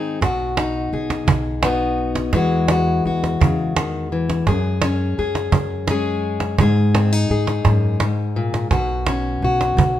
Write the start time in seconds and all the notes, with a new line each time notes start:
Already playing: G#2 D#3 C4 D#4 G#4
0.21 B1 B2 F#4, cajon bass, cajon slap
0.40 cajon slap
0.57 D#4, cajon slap
0.93 B1 G#4, cajon slap
1.10 cajon slap
1.27 B1, cajon bass
1.46 cajon slap
1.63 B3 D#4 F#4, cajon slap
1.98 cajon slap
2.15 cajon slap
2.33 E2 E3 G#3 F#4, cajon bass, cajon slap
2.51 cajon slap
2.68 F#4, cajon slap
3.05 E2 F#4, cajon slap
3.24 cajon slap
3.41 E2 C#3, cajon bass
3.59 cajon slap
3.77 D#3, cajon slap
4.12 E3, cajon slap
4.30 cajon slap
4.47 F#2 G#4, cajon bass, cajon slap
4.64 cajon slap
4.82 C#4, cajon slap
5.18 F#2 G#4, cajon slap
5.35 cajon slap
5.52 F#2, cajon bass
5.70 cajon slap
5.88 G#3 C#4 G#4, cajon slap
6.23 cajon slap
6.40 cajon slap
6.58 G#2 G#4, cajon bass
6.77 cajon slap
6.95 C4, cajon slap
7.12 D#4, cajon slap
7.30 G#2 G#4
7.47 cajon slap
7.65 F#2 G#2, cajon bass, cajon slap
8.00 G#2, cajon slap
8.36 A#2
8.54 cajon slap
8.71 B1 B2 F#4, cajon bass, cajon slap
8.89 cajon slap
9.06 C#4, cajon slap
9.42 B1 F#4, cajon slap
9.61 cajon slap
9.77 B1, cajon bass
9.96 cajon slap